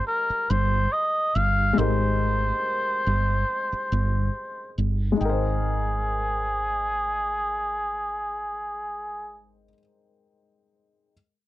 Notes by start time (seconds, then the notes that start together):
Already playing: G#3 D#4 G4 A#4 C5
0.07 A#4
0.30 muted fretless electric bass stroke
0.50 G1 C5
0.93 D#5
1.35 G1 F5
1.73 G#3 D#4
1.78 G#1 G4 A#4 C5
1.82 C5
3.07 G1
3.72 muted fretless electric bass stroke
3.92 G1
4.78 G1
5.12 G#3
5.16 D#4 G#4
5.20 G#1 G5
5.25 A#4
5.29 C5